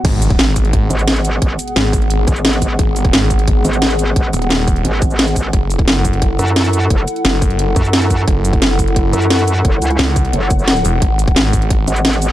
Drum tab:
CC |x---------------|----------------|----------------|----------------|
HH |x-xxx-xxx-x-xxx-|x-xxx-xxx-x-xxx-|x-xxx-xxx-x-xxx-|x-xxx-xxx-x-xxx-|
SH |--x---x---xx-xx-|--x---x---xx-xx-|--x---x---xx-xx-|--x---x---xx-xx-|
SD |----o-------o---|----o-------o---|----o-------o---|----o-------o---|
BD |o--o--o-o-------|o-----o---o---o-|o--o--o-o-------|o-----o---o---o-|

CC |----------------|----------------|----------------|----------------|
HH |x-xxx-xxx-x-xxx-|x-xxx-xxx-x-xxx-|x-xxx-xxx-x-xxx-|x-xxx-xxx-x-xxx-|
SH |--x---x---xx-xx-|--x---x---xx-xx-|--x---x---xx-xx-|--x---x---xx-xx-|
SD |----o-------o---|----o-------o---|----o-------o---|----o-------o---|
BD |o--o--o-o-------|o-----o---o---o-|o--o--o-o-------|o-----o---o-----|

CC |----------------|
HH |x-xxx-xxx-x-xxx-|
SH |--x---x---xx-xx-|
SD |----o-------o---|
BD |o--o--o-o-------|